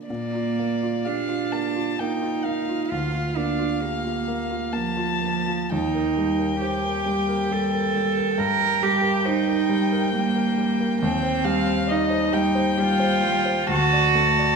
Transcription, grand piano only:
0.10 2.88 A#2 soft
0.35 0.73 F4 soft
0.59 0.96 A#3 soft
0.83 1.20 F4 soft
1.06 1.29 G4 soft
1.29 1.66 F4 soft
1.52 1.90 A#3 soft
1.76 2.13 F4 soft
2.00 2.37 A#3 soft
2.22 2.59 F4 soft
2.45 2.82 A#3 soft
2.69 2.91 F4 soft
2.91 5.67 D2 soft
3.15 3.50 F4 soft
3.37 3.72 A#3 soft
3.59 3.95 F4 soft
3.82 4.04 G4 soft
4.04 4.40 F4 soft
4.28 4.64 A#3 soft
4.51 4.87 F4 soft
4.73 5.11 A#3 soft
4.97 5.37 F4 soft
5.21 5.61 A#3 soft
5.48 5.72 F4 soft
5.72 8.35 D#2 medium
5.95 6.31 A#4 soft
6.17 6.53 G3 soft
6.39 6.74 A#4 soft
6.62 6.84 C5 soft
6.84 7.20 A#4 soft
7.06 7.42 G3 soft
7.29 7.65 A#4 soft
7.51 7.87 G3 soft
7.74 8.09 A#4 soft
7.96 8.30 G3 soft
8.17 8.39 A#4 soft
8.38 10.97 G2 medium
8.60 8.95 A#4 soft
8.82 9.17 G3 soft
9.02 9.38 A#4 soft
9.25 9.48 C5 soft
9.48 9.83 A#4 soft
9.69 10.05 G3 soft
9.92 10.27 A#4 medium
10.13 10.49 G3 soft
10.35 10.71 A#4 soft
10.57 10.93 G3 soft
10.80 11.02 A#4 soft
11.02 13.66 D#2 medium
11.23 11.57 C5 soft
11.45 11.79 G3 soft
11.66 12.01 C5 soft
11.87 12.10 D5 soft
12.10 12.46 C5 soft
12.33 12.69 G3 medium
12.55 12.91 C5 medium
12.78 13.14 G3 medium
13.00 13.37 C5 medium
13.24 13.61 G3 soft
13.45 13.69 C5 medium
13.68 14.56 D2 medium
13.93 14.30 D5 medium
14.15 14.53 A3 medium
14.39 14.56 D5 medium

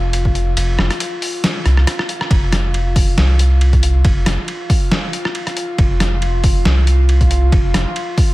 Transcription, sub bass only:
0.00 0.55 F1 loud
0.57 0.77 F1 loud
0.78 0.89 F1 medium
1.65 1.85 C2 medium
2.31 3.16 F1 loud
3.18 4.03 C2 loud
4.05 4.25 F1 loud
4.26 4.37 F1 medium
5.78 6.64 F1 loud
6.65 7.51 C2 loud
7.52 7.73 F1 loud
7.74 7.85 F1 medium

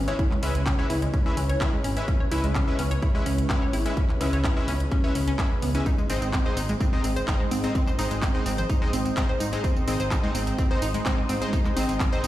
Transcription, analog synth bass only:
0.00 0.14 G#1 medium
0.43 0.52 C#2 loud
0.55 0.73 C#2 medium
0.90 1.08 C#2 medium
1.37 1.55 C#2 loud
1.84 2.02 G#1 medium
2.31 2.41 C#2 medium
2.44 2.62 C#2 medium
2.79 2.97 C#2 medium
3.26 3.44 C#2 loud
3.73 3.91 G#1 medium
4.21 4.30 C#2 loud
4.33 4.50 C#2 medium
4.68 4.86 C#2 medium
5.15 5.33 C#2 medium
5.62 5.80 C#2 medium
6.10 6.19 G#1 medium
6.22 6.40 G#1 medium
6.57 6.75 G#1 medium
7.04 7.22 G#1 loud
7.51 7.69 G#2 medium
7.99 8.08 G#1 loud
8.11 8.28 G#1 medium
8.46 8.64 G#1 medium
8.93 9.11 G#1 loud
9.40 9.58 G#2 medium
9.88 9.97 G#1 medium
10.00 10.18 G#1 medium
10.35 10.53 G#1 medium
10.82 11.00 G#1 loud
11.29 11.47 G#2 medium
11.77 11.86 G#1 loud
11.89 12.06 G#1 medium
12.24 12.27 G#1 medium

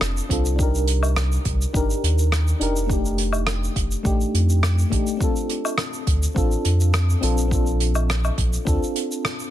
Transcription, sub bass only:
0.01 0.21 F1 loud
0.30 1.38 C2 medium
1.46 1.65 C2 loud
1.74 1.94 G1 medium
2.03 2.53 D#2 medium
2.61 3.69 F1 loud
3.76 3.96 F1 loud
4.05 4.24 A1 medium
4.34 4.84 F2 medium
4.92 5.02 A1 loud
6.07 6.27 D2 loud
6.36 6.55 A1 loud
6.65 7.15 F2 medium
7.23 8.30 A#1 loud
8.38 8.57 A#1 loud
8.67 8.77 D2 loud

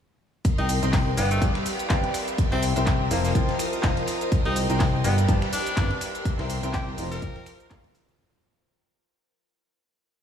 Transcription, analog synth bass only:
0.59 0.80 C2 loud
0.83 1.15 C2 medium
1.18 1.40 G1 loud
1.42 1.56 G1 medium
1.90 2.05 G1 medium
2.52 2.74 C2 loud
2.76 3.09 C2 medium
3.11 3.33 F1 loud
3.35 3.50 F1 medium
3.84 3.98 F1 loud
4.46 4.67 C2 loud
4.70 5.02 C2 loud
5.05 5.27 G1 loud
5.29 5.43 G1 medium
5.77 5.92 G1 loud
6.39 6.61 C2 loud
6.63 6.96 C2 loud
6.98 7.20 F1 loud
7.22 7.37 F1 medium
7.71 7.85 A#1 loud

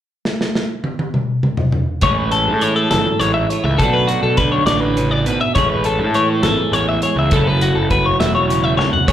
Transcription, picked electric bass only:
2.02 2.49 A1 medium
2.47 2.94 A2 medium
2.92 3.04 G#1 medium
3.20 3.45 A1 medium
3.64 3.77 C#2 medium
3.79 4.16 B1 medium
4.23 4.60 B1 medium
4.67 5.26 A1 medium
5.26 5.39 G#1 medium
5.56 6.00 A1 medium
5.99 6.44 A2 medium
6.43 6.56 G#1 medium
6.72 6.97 A1 medium
7.16 7.29 C#2 medium
7.32 7.69 F#1 loud
7.75 8.13 F#1 medium
8.20 8.78 E1 medium
8.78 8.91 G#1 medium
9.09 9.13 A1 medium

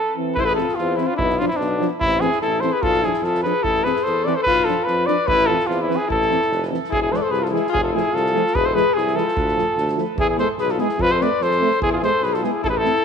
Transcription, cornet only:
0.00 0.16 A4 medium
0.35 0.42 B4 medium
0.41 0.47 C5 medium
0.45 0.54 B4 loud
0.55 0.77 A4 medium
0.75 0.98 F4 medium
0.96 1.08 E4 medium
1.07 1.16 F4 medium
1.17 1.40 E4 medium
1.39 1.47 F4 medium
1.48 1.58 E4 medium
1.56 1.89 D4 medium
2.00 2.22 E4 loud
2.21 2.41 G#4 medium
2.41 2.62 A4 medium
2.61 2.75 C5 medium
2.73 2.84 B4 medium
2.83 3.07 A4 loud
3.05 3.26 G#4 medium
3.24 3.42 A4 medium
3.43 3.65 B4 medium
3.63 3.85 A4 loud
3.84 4.05 B4 medium
4.03 4.26 C5 medium
4.25 4.37 D5 medium
4.35 4.42 C5 medium
4.43 4.66 B4 loud
4.65 4.86 A4 medium
4.84 5.08 B4 medium
5.07 5.29 D5 medium
5.27 5.48 B4 loud
5.46 5.68 A4 medium
5.67 5.83 F4 medium
5.81 5.98 E4 medium
5.96 6.09 G#4 medium
6.11 6.67 A4 medium
6.92 7.01 G#4 medium
7.02 7.14 G#4 medium
7.12 7.18 C5 medium
7.17 7.24 D5 medium
7.23 7.33 C5 medium
7.31 7.45 B4 medium
7.43 7.53 A4 medium
7.53 7.72 G#4 medium
7.72 7.82 G#4 loud
7.84 7.97 A4 medium
7.95 8.16 G#4 medium
8.15 8.56 A4 medium
8.55 8.67 B4 loud
8.66 8.76 C5 medium
8.75 8.95 B4 medium
8.94 9.17 G#4 medium
9.16 9.97 A4 medium
10.20 10.29 G#4 loud
10.30 10.38 G#4 medium
10.39 10.48 C5 medium
10.60 10.72 B4 medium
10.71 10.82 A4 medium
10.80 11.03 G#4 medium
11.02 11.13 B4 loud
11.12 11.24 C5 medium
11.22 11.44 D5 medium
11.43 11.82 C5 loud
11.82 11.91 G#4 loud
11.92 11.99 F4 medium
11.92 11.95 G#4 medium
11.98 12.02 G#4 medium
12.03 12.25 C5 medium
12.24 12.35 B4 medium
12.34 12.45 A4 medium
12.44 12.64 G#4 medium
12.64 12.70 A4 medium
12.69 12.79 B4 medium
12.78 13.05 A4 loud

